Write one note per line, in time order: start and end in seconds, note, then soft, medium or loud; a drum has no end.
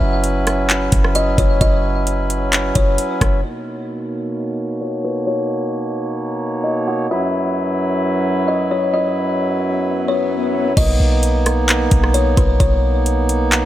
0.00 0.89 F#1 loud
0.00 3.40 F#3 medium
0.00 3.40 C#4 medium
0.00 3.41 E4 medium
0.00 3.40 B4 medium
0.00 0.21 E5 loud
0.24 closed hi-hat medium
0.47 cross-stick loud
0.47 closed hi-hat medium
0.70 clap loud
0.70 closed hi-hat medium
0.92 1.36 F#1 loud
0.92 kick loud
0.92 closed hi-hat medium
1.04 cross-stick medium
1.15 1.37 D#5 medium
1.15 closed hi-hat medium
1.38 1.60 F#1 loud
1.38 1.60 C#5 medium
1.38 kick loud
1.38 closed hi-hat medium
1.61 2.72 F#1 loud
1.61 2.04 D#5 loud
1.61 kick loud
1.61 closed hi-hat medium
2.07 closed hi-hat medium
2.30 closed hi-hat medium
2.53 clap loud
2.53 closed hi-hat medium
2.75 2.98 F#1 loud
2.75 3.40 C#5 medium
2.75 kick loud
2.75 closed hi-hat medium
2.98 closed hi-hat medium
3.21 3.43 F#1 loud
3.21 kick loud
3.21 cross-stick loud
3.21 closed hi-hat medium
3.44 7.07 B2 medium
3.44 7.07 A#3 medium
3.44 7.07 D#4 medium
3.44 7.07 C#5 medium
3.44 3.87 D#5 medium
4.81 5.03 C#5 medium
5.04 5.26 B4 medium
5.27 5.70 C#5 medium
6.64 6.86 D#5 medium
6.87 7.09 F#5 medium
7.11 10.73 F#2 medium
7.11 10.73 F#3 medium
7.11 10.73 E4 medium
7.11 10.73 B4 medium
7.11 7.54 E5 loud
7.11 swell medium
8.48 8.70 D#5 medium
8.71 8.93 C#5 medium
8.94 9.37 D#5 medium
10.08 10.73 C#5 medium
10.77 10.99 B1 loud
10.77 13.65 A#3 medium
10.77 13.65 B3 medium
10.77 13.65 D#4 medium
10.77 11.20 D#5 loud
10.77 kick loud
10.77 closed hi-hat medium
10.77 crash loud
11.00 11.88 B1 loud
11.23 closed hi-hat medium
11.46 cross-stick medium
11.46 closed hi-hat medium
11.69 clap loud
11.69 closed hi-hat medium
11.91 12.36 B1 loud
11.91 kick loud
11.91 closed hi-hat medium
12.04 cross-stick medium
12.14 12.36 C#5 medium
12.14 closed hi-hat medium
12.37 12.59 B1 loud
12.37 12.59 B4 medium
12.37 kick loud
12.37 closed hi-hat medium
12.60 13.65 B1 loud
12.60 13.03 C#5 loud
12.60 kick loud
12.60 closed hi-hat medium
13.06 closed hi-hat medium
13.29 closed hi-hat medium
13.52 clap loud
13.52 closed hi-hat medium